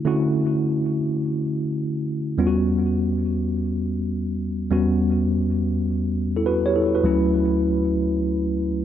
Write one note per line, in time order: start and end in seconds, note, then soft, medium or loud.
0.05 2.34 D3 medium
0.05 2.34 A3 medium
0.05 2.35 C#4 medium
0.05 2.35 E4 medium
0.05 2.35 F#4 medium
2.38 4.67 E2 medium
2.38 4.67 G3 medium
2.38 4.67 B3 medium
2.38 4.68 C#4 medium
2.38 2.48 F4 medium
2.47 4.71 F#4 medium
4.70 7.00 E2 medium
4.70 7.00 G3 medium
4.70 7.00 B3 medium
4.70 7.00 C#4 medium
4.70 6.14 F#4 medium
6.37 6.46 E4 medium
6.37 6.45 A4 medium
6.46 6.65 F#4 medium
6.46 6.64 B4 medium
6.66 6.75 G4 medium
6.66 6.75 C#5 medium
6.76 6.94 E4 medium
6.76 6.94 A4 medium
6.95 7.22 F#4 medium
6.95 7.22 B4 medium
7.03 8.85 D2 medium
7.03 8.85 F#3 medium
7.03 8.85 A3 medium
7.03 8.85 C#4 medium
7.03 8.85 E4 medium